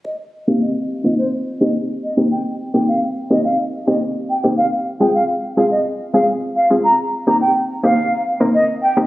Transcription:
X:1
M:4/4
L:1/16
Q:1/4=106
K:Cm
V:1 name="Flute"
e z2 f e z2 e c z2 e z2 e z | g z2 g f z2 e f z2 e z2 g z | f z2 g f z2 f e z2 f z2 f z | b z2 b g z2 f3 z2 e z g z |]
V:2 name="Synth pluck"
z3 [B,CEG]2 z2 [B,CEF]2 z2 [B,CEG]2 z2 [B,CEG]- | [B,CEG] z2 [B,CEG]2 z2 [B,CEG]2 z2 [B,CEG]2 z2 [B,CEG] | z3 [A,CFA]2 z2 [A,CFA]2 z2 [A,CFA]2 z2 [A,CFA] | z3 [B,CEG]2 z2 [B,CEG]2 z2 [B,CEB]2 z2 [B,CEG] |]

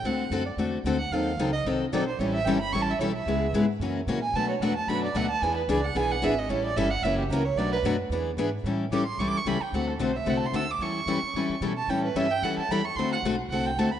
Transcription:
X:1
M:4/4
L:1/8
Q:"Swing" 1/4=223
K:Amix
V:1 name="Violin"
f3 d z3 f | =f3 ^d z2 =d ^B | c e g b (3c' a e c e- | e2 z4 z ^g |
a c f a b d f a | ^g B d f g f e ^d | c d e f e G ^A c | d B z6 |
z2 d' =c' (3^c' d' c' b g | f A =c e (3f a =c' e' d' | c'6 z a | g B e g f a b c' |
=c' f z2 f g a b |]
V:2 name="Steel-string acoustic guitar"
[D,A,=CFA] z [D,A,CFA] z [D,A,CFA] z [D,A,CFA] z | [^D,F,^B,^DA] z [D,F,B,DA] z [D,F,B,DA] z [D,F,B,DA] z | [E,G,CEA] z [E,G,CEA] z [E,G,CEA] z [E,G,CEA] z | [C,^G,B,E^G] z [C,G,B,EG] z [F,CE^A] z [F,CEA] z |
[B,,F,A,DFB] z [B,,F,A,DFB] z [B,,F,A,DFB] z [B,,F,A,DFB] z | [E,B,D^GB] z [E,B,DGB] z [E,B,DGB] z [E,B,DGB] z | [E,G,CEA] z [E,G,CEA] z [F,CE^A] z [F,CEA] z | [B,,F,A,DFB] z [B,,F,A,DFB] z [E,B,D^GB] z [E,B,DGB] z |
[E,G,CEA] z [E,G,CEA] z [E,G,CEA] z [E,G,CEA] z | [D,A,=CFA] z [D,A,CFA] z [D,A,CFA] z [D,A,CFA] z | [E,G,CEA] z [E,G,CEA] z [E,G,CEA] z [E,G,CEA] z | [E,G,CEA] z [E,G,CEA] z [E,G,CEA] z [E,G,CEA] z |
[D,A,=CFA] z [D,A,CFA] z [D,A,CFA] z [D,A,CFA] z |]
V:3 name="Steel-string acoustic guitar"
[D,A,=CFA] z [D,A,CFA] z [D,A,CFA] z [D,A,CFA] z | [^D,F,^B,^DA] z [D,F,B,DA] z [D,F,B,DA] z [D,F,B,DA] z | [E,G,CEA] z [E,G,CEA] z [E,G,CEA] z [E,G,CEA] z | [C,^G,B,E^G] z [C,G,B,EG] z [C,E,^A,CF] z [C,E,A,CF] z |
[B,,F,A,DF] z [B,,F,A,DF] z [B,,F,A,DF] z [B,,F,A,DF] z | [E,B,D^G] z [E,B,DG] z [E,B,DG] z [E,B,DG] z | [E,G,CEA] z [E,G,CEA] z [C,E,^A,CF] z [C,E,A,CF] z | [B,,F,A,DF] z [B,,F,A,DF] z [E,B,D^G] z [E,B,DG] z |
[E,G,CEA] z [E,G,CEA] z [E,G,CEA] z [E,G,CEA] z | [D,A,=CFA] z [D,A,CFA] z [D,A,CFA] z [D,A,CFA] z | [E,G,CEA] z [E,G,CEA] z [E,G,CEA] z [E,G,CEA] z | [E,G,CEA] z [E,G,CEA] z [E,G,CEA] z [E,G,CEA] z |
[D,A,=CFA] z [D,A,CFA] z [D,A,CFA] z [D,A,CFA] z |]
V:4 name="Upright bass" clef=bass
D,,2 F,,2 E,,2 D,,2 | ^D,,2 C,,2 ^B,,,2 =B,,,2 | A,,,2 G,,,2 A,,,2 B,,,2 | C,,2 ^G,,2 F,,2 ^A,,2 |
B,,2 E,,2 F,,2 D,,2 | E,,2 C,,2 B,,,2 ^G,,,2 | A,,,2 G,,,2 F,,,2 C,,2 | B,,,2 F,,2 E,,2 ^G,,2 |
A,,2 A,,,2 B,,, z C,, z | D,,2 B,,,2 =C,,2 D,,2 | E,,2 F,, z G,, z B,,2 | A,,2 G,,2 F,, z E,,2 |
D,,2 B,,,2 =C,,2 D,,2 |]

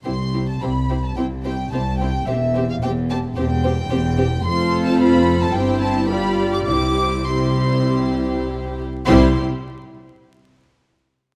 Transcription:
X:1
M:4/4
L:1/16
Q:1/4=107
K:C
V:1 name="Violin section"
c'3 a b3 a g2 g2 a2 g2 | e3 f g2 a2 g8 | c'3 a b3 a g2 a2 b3 d' | d'4 c'8 z4 |
c'2 z12 z2 |]
V:2 name="Violin section"
[Gc]2 [Gc]2 [Gc]2 [Gc]2 [Gc]2 [Gc]2 [Gc]2 [Gc]2 | [Gc]2 [Gc]2 [Gc]2 [Gc]2 [Gc]2 [Gc]2 [Gc]2 [Gc]2 | [Ac]8 [Gc]4 [Gd]4 | [Gc]4 [Gc]8- [Gc]2 z2 |
[Gc]2 z12 z2 |]
V:3 name="Viola section"
[CE]2 [CE]2 [CE]2 [CE]2 [CE]2 [CE]2 [CE]2 [CE]2 | [CG]2 [CG]2 [CG]2 [CG]2 [CG]2 [CG]2 [CG]2 [CG]2 | [CF]8 [CE]4 [G,F]4 | [G,E]4 [G,E]8- [G,E]2 z2 |
[G,E]2 z12 z2 |]
V:4 name="Cello section" clef=bass
C,,4 C,,4 C,,4 C,,4 | E,,4 E,,4 E,,4 E,,4 | F,,8 G,,8 | C,12- C,2 z2 |
C,2 z12 z2 |]
V:5 name="Double bass section" clef=bass
C,,4 C,,4 C,,4 C,,4 | E,,,4 E,,,4 E,,,4 E,,,4 | F,,,8 G,,,8 | C,,12- C,,2 z2 |
C,,2 z12 z2 |]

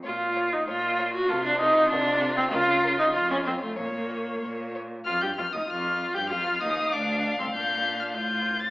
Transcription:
X:1
M:2/4
L:1/16
Q:1/4=97
K:Bbm
V:1 name="Violin"
d2 d2 d2 d2 | =A2 A2 A2 A2 | B2 B2 e2 e2 | d2 d2 d2 d2 |
[K:Eblyd] f' g' f' e' f'3 g' | f'2 e'2 d'3 c' | g'3 f' g'3 a' |]
V:2 name="Violin"
z4 F4- | F8- | F8 | d6 z2 |
[K:Eblyd] z4 f4- | f8- | f8 |]
V:3 name="Viola"
F3 E F3 G | F =D E2 D3 C | F3 E F D C =A, | B,6 z2 |
[K:Eblyd] F G F E F3 G | F2 E2 D3 C | D4 F4 |]
V:4 name="Cello" clef=bass
B,,4 B,,4 | C,4 C,4 | D,4 F,,4 | B,,4 B,,4 |
[K:Eblyd] F,, G,, F,, E,, F,,3 G,, | F,,2 E,,2 D,,3 C,, | B,,4 A,,4 |]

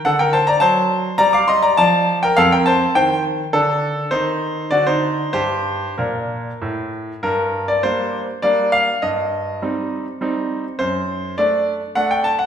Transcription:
X:1
M:3/4
L:1/16
Q:1/4=102
K:Gm
V:1 name="Grand piano"
[A^f] [Bg] [ca] [db] [ca]4 [db] [=fd'] [ec'] [db] | [da]3 [Bg] [Af] [Bg] [ca]2 [cg]2 z2 | [DA]4 [Ec]4 [^Fd] [Ec]3 | [Gc]4 [DB]6 z2 |
B3 d c4 d2 f2 | e8- e2 z2 | c4 d4 ^f g a f |]
V:2 name="Grand piano" clef=bass
D,4 ^F,4 G,4 | F,4 F,,4 E,4 | D,4 E,4 D,4 | G,,4 B,,4 A,,4 |
G,,4 [G,B,D]4 [G,B,D]4 | G,,4 [G,CE]4 [G,CE]4 | ^F,,4 [A,D]4 [A,D]4 |]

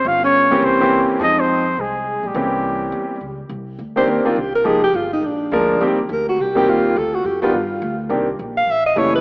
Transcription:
X:1
M:4/4
L:1/8
Q:"Swing" 1/4=208
K:Cphr
V:1 name="Trumpet"
f d3 c3 z | e c3 A3 G- | G6- G z | [K:Cm] z8 |
z8 | z8 | z8 | z8 |]
V:2 name="Alto saxophone"
F D3 C3 z | E C3 A,3 G,- | G,6- G, z | [K:Cm] z3 c B D G B |
A G F E D4 | z2 B ^F G G =F2 | =A ^F G G =F3 z | z3 f =e _e ^c =B |]
V:3 name="Grand piano"
z3 [=E,B,CDG]2 [E,B,CDG]3 | [F,A,CEA]3 z4 z | [=E,B,CDG]4- [E,B,CDG] z3 | [K:Cm] z3 [E,B,CDG]2 [E,B,CDF] z2 |
[F,A,B,EG] z4 z [F,A,B,DB]2 | [E,G,B,CG] z4 [E,G,B,CG]3 | z3 [E,G,=B,DF] z4 | [E,B,CDG] z4 z [=E,G,=A,^C=E]2 |]
V:4 name="Upright bass" clef=bass
G,,,3 B,,, C,,3 z | F,,4 C,,3 B,,, | C,,4 =E,,2 D,,2 | [K:Cm] C,,2 D,,2 E,, z C,,2 |
F,,,2 G,,,2 B,,,2 D,,2 | E,,2 D,,2 C,,2 E,,2 | D,,2 ^F,,2 G,,2 D,,2 | C,,2 B,,,2 =A,,,2 ^F,,,2 |]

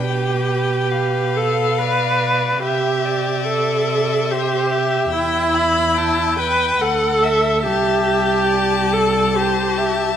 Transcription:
X:1
M:3/4
L:1/8
Q:1/4=71
K:C
V:1 name="Violin"
g2 f4 | e6 | [K:Ador] g b a g f e | a6 |]
V:2 name="Violin"
B4 d2 | e d3 c e- | [K:Ador] e2 g2 f e | e2 d2 c e |]
V:3 name="Viola"
G3 A B2 | G2 A2 G2 | [K:Ador] E3 B A2 | G3 A G2 |]
V:4 name="Cello" clef=bass
B,,6 | C,6 | [K:Ador] E,,4 D,,2 | C,,6 |]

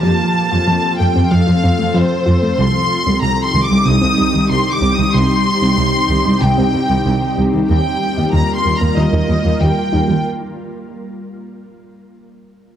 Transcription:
X:1
M:4/4
L:1/16
Q:1/4=94
K:Cm
V:1 name="Violin section"
=a6 g2 f4 c4 | c'4 (3b2 c'2 d'2 e'4 (3c'2 d'2 e'2 | c'8 g6 z2 | g4 (3b2 c'2 b2 e4 g4 |
z16 |]
V:2 name="Ambient pad"
[F,CF=A]16 | [G,CEG]16- | [G,CEG]16 | [G,B,FB]16 |
z16 |]
V:3 name="Synth pluck" clef=bass
F, z2 F F, z =A, C F, F C A, F, z F A, | C, z2 C C, z E, G, C, C G, E, C, z C E, | C, z2 C C, z E, G, C, C G, E, C, z C E, | E, z2 E E, z G, B, E, E B, G, E, z E G, |
z16 |]
V:4 name="Cello section" clef=bass
F,, z2 F,, F,, z F,, F,, F,, F,, F,, F,, F,, z F,, F,, | C,, z2 C,, C,, z C,, C,, C,, C,, C,, C,, C,, z C,, C,, | C,, z2 C,, C,, z C,, C,, C,, C,, C,, C,, C,, z C,, C,, | E,, z2 E,, E,, z E,, E,, E,, E,, E,, E,, E,, z E,, E,, |
z16 |]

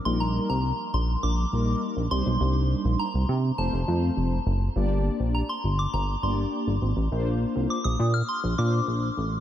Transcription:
X:1
M:4/4
L:1/16
Q:1/4=102
K:Gm
V:1 name="Synth bell"
c' b2 b3 c'2 d'4 z2 c'2- | c'4 b4 a6 z2 | z4 b c'2 d' b2 c'2 z4 | z4 d' e'2 f' c'2 d'2 z4 |]
V:2 name="Analog polysynth"
[G,B,EB]4 z6 [G,B,EB]4 [G,DEc]2- | [G,DEc]4 z4 [A,CFc]2 [A,CFc]4 z2 | [B,DGd]4 z6 [B,DGd]4 z2 | [B,DFc]4 z6 [B,DFc]4 z2 |]
V:3 name="Analog synth bass" clef=bass
B,,,3 C,,2 z B,,,2 B,,,2 B,,,2 z B,,, C,, _C,, | C,,3 B,,, z C,, C,2 F,,, F,,, F,,2 F,,,2 _G,,,2 | G,,,3 B,,,2 z G,,,2 G,,,2 G,,,2 z G,,, _A,,, =A,,, | B,,,3 C,, z B,,, B,,2 z B,,, B,,2 B,,,2 A,,,2 |]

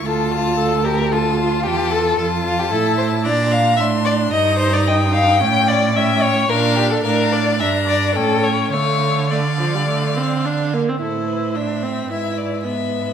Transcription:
X:1
M:4/4
L:1/16
Q:1/4=110
K:Dm
V:1 name="Violin"
a8 a4 a4 | a8 b4 c'4 | b4 g8 g4 | f4 f4 b4 g4 |
f4 f8- f2 z2 | [K:Am] c4 e4 e2 d2 e4 |]
V:2 name="Violin"
A2 F4 B2 A2 F2 G2 A2 | A2 F G A2 c2 d2 f2 e2 d2 | _e2 c d e2 f2 g2 d2 =e2 ^c2 | B2 G A B2 d2 e2 d2 A2 ^c2 |
^c4 d8 z4 | [K:Am] A2 B2 c4 B8 |]
V:3 name="Viola"
F4 A2 G2 F8 | F4 E4 D4 D4 | _E8 ^C4 C4 | D4 D4 D4 ^C4 |
A,4 A,2 F, G, A,2 C2 D2 B, C | [K:Am] E4 D2 C2 E4 B,4 |]
V:4 name="Cello" clef=bass
D,,12 E,,4 | F,,4 A,,4 B,,4 A,,4 | G,,8 A,,8 | B,,4 A,,4 G,,4 A,,4 |
D,12- D,2 z2 | [K:Am] A,,8 ^G,,8 |]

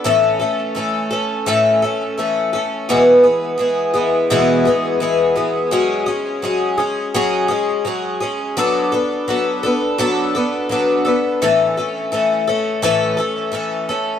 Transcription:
X:1
M:4/4
L:1/8
Q:1/4=85
K:A
V:1 name="Twelve-string acoustic guitar"
[A,,E,A,CA] [A,CA] [E,A,CA] [A,CA] [A,,E,A,CA] [A,CA] [E,A,CA] [A,CA] | [E,,B,,E,G,B,G] [E,G,B,G] [E,G,B,G] [E,G,B,G] [E,,B,,E,G,B,G] [E,G,B,G] [E,G,B,G] [E,G,B,G] | [F,G,CG] [G,CG] [F,G,CG] [G,CG] [F,G,CG] [G,CG] [F,G,CG] [G,CG] | [F,B,DA] [B,DA] [F,B,DA] [B,DA] [F,B,DA] [B,DA] [F,B,DA] [B,DA] |
[A,,E,A,CA] [A,CA] [E,A,CA] [A,CA] [A,,E,A,CA] [A,CA] [E,A,CA] [A,CA] |]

